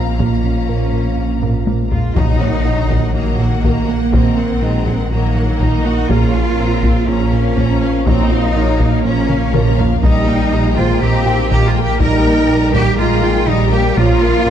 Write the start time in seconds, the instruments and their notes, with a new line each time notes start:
Already playing: double bass section A#1, sub bass A#1, french horn section F3 F4, viola section A#3, cello section C4, felt piano D#5, violin section F5 A#5
0.19 analog synth bass A#2, synth pluck A#3, cello section C#4, taiko
0.44 analog synth bass A#2, synth pluck C#4
0.69 analog synth bass A#2, synth pluck A#4
0.93 analog synth bass A#2, synth pluck A#3
1.18 analog synth bass A#2, synth pluck C#4
1.42 analog synth bass A#2, synth pluck A#4, taiko low-mid
1.67 analog synth bass A#2, synth pluck A#3, taiko high
1.91 analog synth bass A#2, french horn section G#3, cello section F4, taiko low
2.16 double bass section A#1, sub bass A#1, analog synth bass A#2, synth pluck D#3, french horn section F#3, cello section D#4, violin section F#4 D#5 A#5, taiko, impact
2.40 synth pluck A#3, analog synth bass A#3, violin section A#4 F#5, felt piano C#5
2.65 double bass section A#1, analog synth bass A#2, synth pluck D#4, violin section F#4 D#5 A#5
2.90 analog synth bass A#2, synth pluck D#3, violin section A#4 F#5, taiko
3.14 double bass section A#1, analog synth bass A#2, french horn section D#3, viola section F#3, synth pluck F#3, cello section A#3, violin section F#4 D#5 A#5
3.39 analog synth bass A#2, synth pluck D#4, violin section A#4 F#5
3.63 double bass section A#1, analog synth bass A#2, synth pluck D#3, viola section A#3, felt piano A#3 A#4, violin section F#4 D#5 A#5, taiko
3.88 synth pluck A#3, analog synth bass A#3, violin section A#4 F#5
4.13 double bass section A#1, analog synth bass A#2, synth pluck D#3, french horn section D#3, cello section C4, violin section F#4 D#5 A#5, taiko
4.37 analog synth bass A#3, synth pluck A#3, violin section A#4 F#5
4.61 double bass section A#1, analog synth bass A#2, viola section G#3, synth pluck D#4, violin section F#4 D#5 A#5
4.87 analog synth bass A#2, synth pluck D#3, violin section A#4 F#5, taiko
5.11 double bass section A#1, analog synth bass A#2, french horn section D#3, synth pluck F#3, viola section F#3, cello section A#3, violin section F#4 D#5 A#5
5.36 analog synth bass A#2, synth pluck D#4, violin section A#4 F#5
5.60 double bass section A#1, analog synth bass A#2, synth pluck D#3, viola section D#4, violin section F#4 D#5 A#5, taiko
5.85 french horn section A#3, analog synth bass A#3, synth pluck A#3, cello section F#4, violin section A#4 F#5
6.09 sub bass A#1, double bass section A#1, analog synth bass A#2, synth pluck A#3, french horn section A#3, viola section C#4, cello section F4, violin section F4 C#5 A#5, felt piano G#4, taiko
6.34 analog synth bass A#3, synth pluck F4, violin section A#4 F5
6.58 double bass section A#1, analog synth bass A#2, viola section C4, violin section F4 C#5 A#5, synth pluck A#4
6.83 analog synth bass A#2, synth pluck A#3, violin section A#4 F5, taiko
7.07 double bass section A#1, analog synth bass A#2, french horn section F3, viola section A#3, cello section C#4, synth pluck C#4, violin section F4 C#5 A#5
7.33 analog synth bass A#2, violin section A#4 F5, synth pluck A#4
7.56 double bass section A#1, analog synth bass A#2, synth pluck A#3, viola section C#4, violin section F4 C#5 A#5, taiko
7.81 analog synth bass A#3, synth pluck F4, violin section A#4 F5
8.05 double bass section A#1, analog synth bass A#2, french horn section F#3, synth pluck A#3, viola section C4, cello section D#4, violin section F4 C#5 A#5, taiko
8.30 analog synth bass A#3, synth pluck F4, violin section A#4 F5
8.55 double bass section A#1, analog synth bass A#2, viola section A#3, violin section F4 C#5 A#5, synth pluck A#4
8.79 analog synth bass A#2, synth pluck A#3, violin section A#4 F5, taiko
9.04 double bass section A#1, analog synth bass A#2, french horn section F3, synth pluck C#4, cello section C#4, violin section F4 C#5 A#5
9.29 analog synth bass A#2, violin section A#4 F5, synth pluck A#4, taiko mid
9.53 double bass section A#1, analog synth bass A#2, viola section F3, synth pluck A#3, violin section F4 C#5 A#5, felt piano A#4, taiko mid
9.78 analog synth bass A#3, synth pluck F4, violin section A#4 F5, taiko low
10.02 double bass section A#1, sub bass A#1, analog synth bass A#2, synth pluck D#3, french horn section G3, viola section G3, cello section D#4, violin section G4 D#5 A#5, taiko
10.27 synth pluck A#3, analog synth bass A#3, violin section A#4 G5
10.51 double bass section A#1, analog synth bass A#2, viola section A#3, synth pluck D#4, violin section G4 D#5 A#5
10.76 analog synth bass A#2, synth pluck D#3, french horn section G#3, cello section F4, violin section A#4 G5, felt piano C5, taiko
11.01 double bass section A#1, analog synth bass A#2, synth pluck G3, french horn section A#3, viola section C4, violin section G4 D#5 A#5, cello section G4
11.25 analog synth bass A#2, synth pluck D#4, felt piano G4 G5, violin section A#4 G5
11.49 double bass section A#1, analog synth bass A#2, synth pluck D#3, french horn section A#3, viola section A#3, violin section G4 D#5 A#5, cello section G4, taiko
11.66 french horn section G#3, cello section F4
11.74 synth pluck A#3, analog synth bass A#3, violin section A#4 G5
11.82 french horn section A#3, cello section G4
11.98 double bass section A#1, analog synth bass A#2, synth pluck D#3, viola section G3, french horn section D#4, violin section G4 D#5 A#5, cello section A#4, taiko
12.23 synth pluck A#3, analog synth bass A#3, violin section A#4 G5
12.49 double bass section A#1, analog synth bass A#2, viola section G3, synth pluck D#4, violin section G4 D#5 A#5
12.73 analog synth bass A#2, synth pluck D#3, french horn section A#3, cello section G4, violin section A#4 G5, taiko
12.97 double bass section A#1, analog synth bass A#2, synth pluck G3, french horn section G#3, viola section A#3, cello section F4, violin section G4 D#5 A#5
13.22 analog synth bass A#2, synth pluck D#4, violin section A#4 G5
13.47 double bass section A#1, analog synth bass A#2, synth pluck D#3, french horn section G3, viola section G3, cello section D#4, violin section G4 D#5 A#5, taiko
13.71 french horn section A#3, analog synth bass A#3, synth pluck A#3, cello section G4, violin section A#4 G5
13.96 double bass section A#1, sub bass A#1, analog synth bass A#2, viola section F3, french horn section A#3, synth pluck A#3, violin section F4 C#5 A#5, cello section F4, taiko
14.21 analog synth bass A#3, synth pluck F4, violin section A#4 F5
14.45 double bass section A#1, analog synth bass A#2, viola section C#4, violin section F4 C#5 A#5, synth pluck A#4, felt piano F5